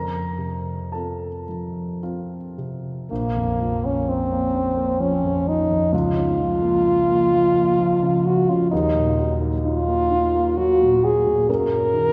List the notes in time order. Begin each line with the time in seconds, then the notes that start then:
Already playing: F2 A#4 A#5
0.38 C3
0.92 C4 F4 A4 A5
1.49 F3
2.03 C4 F4
2.58 C3
3.10 A#1 A#3
3.36 F2
3.60 F3
3.84 A#3 C#4
4.09 C4 C#4
4.32 A#3
4.54 C#4
4.77 A#3
5.00 F3 C#4
5.23 F2
5.47 F3 D#4
5.70 F2
5.93 C#2 F4
6.17 C#3
6.40 F3
6.62 A#3
6.86 F3
7.10 A#3
7.32 F3
7.56 A#3
7.78 F3
8.03 C#3
8.25 F3 F#4
8.50 C#3 F4
8.72 D#2 D#4
8.95 A#2
9.18 F#3
9.41 A#3
9.65 D#4 F4
9.88 A#3
10.10 D#4
10.35 A#3
10.58 F#3 F#4
10.82 A#2
11.04 F#3 G#4
11.27 A#2
11.49 F#2 A#4
11.71 F#3
11.94 D#3